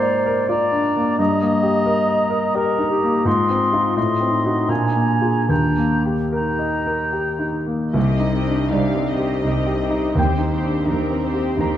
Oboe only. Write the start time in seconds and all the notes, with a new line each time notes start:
Already playing: D5
0.49 D5
1.19 D#5
2.57 D#5
3.27 D#5
3.96 D#5
4.70 G#5
5.50 G5
6.35 G5